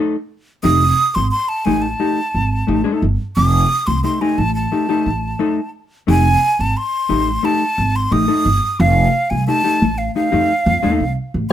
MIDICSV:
0, 0, Header, 1, 4, 480
1, 0, Start_track
1, 0, Tempo, 678733
1, 455, Time_signature, 4, 2, 24, 8
1, 8150, End_track
2, 0, Start_track
2, 0, Title_t, "Flute"
2, 0, Program_c, 0, 73
2, 450, Note_on_c, 0, 87, 113
2, 812, Note_on_c, 0, 84, 96
2, 823, Note_off_c, 0, 87, 0
2, 923, Note_off_c, 0, 84, 0
2, 927, Note_on_c, 0, 84, 97
2, 1050, Note_on_c, 0, 81, 86
2, 1061, Note_off_c, 0, 84, 0
2, 1165, Note_on_c, 0, 80, 100
2, 1176, Note_off_c, 0, 81, 0
2, 1285, Note_on_c, 0, 81, 82
2, 1296, Note_off_c, 0, 80, 0
2, 2132, Note_off_c, 0, 81, 0
2, 2375, Note_on_c, 0, 87, 113
2, 2735, Note_on_c, 0, 84, 93
2, 2745, Note_off_c, 0, 87, 0
2, 2851, Note_off_c, 0, 84, 0
2, 2855, Note_on_c, 0, 84, 91
2, 2979, Note_on_c, 0, 80, 90
2, 2990, Note_off_c, 0, 84, 0
2, 3099, Note_on_c, 0, 81, 99
2, 3109, Note_off_c, 0, 80, 0
2, 3213, Note_off_c, 0, 81, 0
2, 3217, Note_on_c, 0, 81, 73
2, 4031, Note_off_c, 0, 81, 0
2, 4315, Note_on_c, 0, 80, 105
2, 4671, Note_on_c, 0, 81, 87
2, 4681, Note_off_c, 0, 80, 0
2, 4787, Note_on_c, 0, 84, 99
2, 4798, Note_off_c, 0, 81, 0
2, 5267, Note_on_c, 0, 81, 94
2, 5278, Note_off_c, 0, 84, 0
2, 5627, Note_on_c, 0, 84, 97
2, 5638, Note_off_c, 0, 81, 0
2, 5745, Note_on_c, 0, 87, 113
2, 5755, Note_off_c, 0, 84, 0
2, 6224, Note_on_c, 0, 77, 94
2, 6234, Note_off_c, 0, 87, 0
2, 6577, Note_on_c, 0, 80, 86
2, 6588, Note_off_c, 0, 77, 0
2, 6695, Note_off_c, 0, 80, 0
2, 6699, Note_on_c, 0, 81, 101
2, 7057, Note_on_c, 0, 77, 78
2, 7068, Note_off_c, 0, 81, 0
2, 7174, Note_off_c, 0, 77, 0
2, 7178, Note_on_c, 0, 77, 91
2, 7870, Note_off_c, 0, 77, 0
2, 8150, End_track
3, 0, Start_track
3, 0, Title_t, "Hollow-body jazz guitar"
3, 0, Program_c, 1, 26
3, 0, Note_on_c, 1, 57, 76
3, 0, Note_on_c, 1, 63, 85
3, 0, Note_on_c, 1, 69, 94
3, 107, Note_off_c, 1, 57, 0
3, 109, Note_off_c, 1, 63, 0
3, 111, Note_off_c, 1, 69, 0
3, 445, Note_on_c, 1, 57, 80
3, 451, Note_on_c, 1, 63, 83
3, 455, Note_on_c, 1, 67, 82
3, 587, Note_off_c, 1, 57, 0
3, 590, Note_off_c, 1, 63, 0
3, 592, Note_off_c, 1, 67, 0
3, 1171, Note_on_c, 1, 57, 74
3, 1177, Note_on_c, 1, 63, 85
3, 1178, Note_on_c, 1, 67, 95
3, 1310, Note_off_c, 1, 57, 0
3, 1313, Note_off_c, 1, 63, 0
3, 1314, Note_off_c, 1, 67, 0
3, 1410, Note_on_c, 1, 57, 65
3, 1413, Note_on_c, 1, 63, 77
3, 1417, Note_on_c, 1, 67, 80
3, 1550, Note_off_c, 1, 57, 0
3, 1552, Note_off_c, 1, 63, 0
3, 1554, Note_off_c, 1, 67, 0
3, 1889, Note_on_c, 1, 57, 69
3, 1896, Note_on_c, 1, 63, 73
3, 1898, Note_on_c, 1, 67, 80
3, 2000, Note_off_c, 1, 57, 0
3, 2004, Note_off_c, 1, 63, 0
3, 2005, Note_off_c, 1, 67, 0
3, 2009, Note_on_c, 1, 69, 84
3, 2014, Note_on_c, 1, 63, 70
3, 2020, Note_on_c, 1, 57, 72
3, 2156, Note_off_c, 1, 69, 0
3, 2159, Note_off_c, 1, 63, 0
3, 2161, Note_off_c, 1, 57, 0
3, 2854, Note_on_c, 1, 57, 67
3, 2858, Note_on_c, 1, 63, 63
3, 2862, Note_on_c, 1, 67, 63
3, 2963, Note_off_c, 1, 57, 0
3, 2966, Note_off_c, 1, 63, 0
3, 2967, Note_off_c, 1, 67, 0
3, 2979, Note_on_c, 1, 67, 79
3, 2983, Note_on_c, 1, 63, 84
3, 2986, Note_on_c, 1, 57, 69
3, 3116, Note_off_c, 1, 67, 0
3, 3118, Note_off_c, 1, 63, 0
3, 3119, Note_off_c, 1, 57, 0
3, 3336, Note_on_c, 1, 57, 69
3, 3341, Note_on_c, 1, 63, 66
3, 3346, Note_on_c, 1, 67, 69
3, 3445, Note_off_c, 1, 57, 0
3, 3447, Note_off_c, 1, 63, 0
3, 3450, Note_off_c, 1, 67, 0
3, 3458, Note_on_c, 1, 67, 97
3, 3463, Note_on_c, 1, 63, 84
3, 3466, Note_on_c, 1, 57, 75
3, 3595, Note_off_c, 1, 67, 0
3, 3598, Note_off_c, 1, 63, 0
3, 3600, Note_off_c, 1, 57, 0
3, 3813, Note_on_c, 1, 57, 92
3, 3817, Note_on_c, 1, 63, 94
3, 3821, Note_on_c, 1, 69, 91
3, 3953, Note_off_c, 1, 57, 0
3, 3955, Note_off_c, 1, 63, 0
3, 3957, Note_off_c, 1, 69, 0
3, 4292, Note_on_c, 1, 57, 77
3, 4298, Note_on_c, 1, 63, 90
3, 4302, Note_on_c, 1, 67, 99
3, 4433, Note_off_c, 1, 57, 0
3, 4436, Note_off_c, 1, 63, 0
3, 4438, Note_off_c, 1, 67, 0
3, 5014, Note_on_c, 1, 57, 76
3, 5018, Note_on_c, 1, 63, 92
3, 5022, Note_on_c, 1, 67, 89
3, 5154, Note_off_c, 1, 57, 0
3, 5156, Note_off_c, 1, 63, 0
3, 5158, Note_off_c, 1, 67, 0
3, 5253, Note_on_c, 1, 57, 81
3, 5260, Note_on_c, 1, 63, 83
3, 5263, Note_on_c, 1, 67, 80
3, 5393, Note_off_c, 1, 57, 0
3, 5397, Note_off_c, 1, 63, 0
3, 5398, Note_off_c, 1, 67, 0
3, 5736, Note_on_c, 1, 57, 60
3, 5742, Note_on_c, 1, 63, 62
3, 5746, Note_on_c, 1, 67, 61
3, 5845, Note_off_c, 1, 57, 0
3, 5848, Note_off_c, 1, 63, 0
3, 5850, Note_off_c, 1, 67, 0
3, 5855, Note_on_c, 1, 69, 84
3, 5862, Note_on_c, 1, 63, 87
3, 5864, Note_on_c, 1, 57, 72
3, 5994, Note_off_c, 1, 69, 0
3, 5997, Note_off_c, 1, 63, 0
3, 5999, Note_off_c, 1, 57, 0
3, 6701, Note_on_c, 1, 57, 71
3, 6707, Note_on_c, 1, 63, 68
3, 6710, Note_on_c, 1, 67, 71
3, 6807, Note_off_c, 1, 57, 0
3, 6810, Note_off_c, 1, 63, 0
3, 6811, Note_off_c, 1, 67, 0
3, 6820, Note_on_c, 1, 67, 80
3, 6824, Note_on_c, 1, 63, 70
3, 6829, Note_on_c, 1, 57, 60
3, 6956, Note_off_c, 1, 67, 0
3, 6958, Note_off_c, 1, 63, 0
3, 6960, Note_off_c, 1, 57, 0
3, 7181, Note_on_c, 1, 57, 56
3, 7185, Note_on_c, 1, 63, 69
3, 7190, Note_on_c, 1, 67, 75
3, 7287, Note_off_c, 1, 57, 0
3, 7289, Note_off_c, 1, 63, 0
3, 7289, Note_off_c, 1, 67, 0
3, 7297, Note_on_c, 1, 67, 81
3, 7300, Note_on_c, 1, 63, 85
3, 7306, Note_on_c, 1, 57, 70
3, 7434, Note_off_c, 1, 67, 0
3, 7436, Note_off_c, 1, 63, 0
3, 7439, Note_off_c, 1, 57, 0
3, 7656, Note_on_c, 1, 57, 92
3, 7660, Note_on_c, 1, 63, 97
3, 7665, Note_on_c, 1, 69, 92
3, 7799, Note_off_c, 1, 57, 0
3, 7802, Note_off_c, 1, 63, 0
3, 7804, Note_off_c, 1, 69, 0
3, 8150, End_track
4, 0, Start_track
4, 0, Title_t, "Upright bass"
4, 0, Program_c, 2, 32
4, 456, Note_on_c, 2, 29, 102
4, 642, Note_off_c, 2, 29, 0
4, 820, Note_on_c, 2, 32, 81
4, 911, Note_off_c, 2, 32, 0
4, 1180, Note_on_c, 2, 33, 75
4, 1365, Note_off_c, 2, 33, 0
4, 1659, Note_on_c, 2, 32, 75
4, 1844, Note_off_c, 2, 32, 0
4, 1897, Note_on_c, 2, 33, 90
4, 1991, Note_off_c, 2, 33, 0
4, 2138, Note_on_c, 2, 31, 85
4, 2231, Note_off_c, 2, 31, 0
4, 2381, Note_on_c, 2, 29, 105
4, 2566, Note_off_c, 2, 29, 0
4, 2741, Note_on_c, 2, 36, 83
4, 2833, Note_off_c, 2, 36, 0
4, 3099, Note_on_c, 2, 33, 84
4, 3285, Note_off_c, 2, 33, 0
4, 3579, Note_on_c, 2, 33, 79
4, 3766, Note_off_c, 2, 33, 0
4, 4301, Note_on_c, 2, 29, 108
4, 4487, Note_off_c, 2, 29, 0
4, 4662, Note_on_c, 2, 32, 78
4, 4755, Note_off_c, 2, 32, 0
4, 5021, Note_on_c, 2, 33, 81
4, 5207, Note_off_c, 2, 33, 0
4, 5502, Note_on_c, 2, 32, 84
4, 5687, Note_off_c, 2, 32, 0
4, 5741, Note_on_c, 2, 33, 103
4, 5834, Note_off_c, 2, 33, 0
4, 5978, Note_on_c, 2, 31, 95
4, 6072, Note_off_c, 2, 31, 0
4, 6221, Note_on_c, 2, 29, 111
4, 6406, Note_off_c, 2, 29, 0
4, 6584, Note_on_c, 2, 36, 78
4, 6675, Note_off_c, 2, 36, 0
4, 6943, Note_on_c, 2, 33, 82
4, 7128, Note_off_c, 2, 33, 0
4, 7303, Note_on_c, 2, 41, 91
4, 7394, Note_off_c, 2, 41, 0
4, 7540, Note_on_c, 2, 41, 101
4, 7633, Note_off_c, 2, 41, 0
4, 7660, Note_on_c, 2, 39, 93
4, 7752, Note_off_c, 2, 39, 0
4, 7779, Note_on_c, 2, 36, 77
4, 7872, Note_off_c, 2, 36, 0
4, 8021, Note_on_c, 2, 33, 87
4, 8113, Note_off_c, 2, 33, 0
4, 8150, End_track
0, 0, End_of_file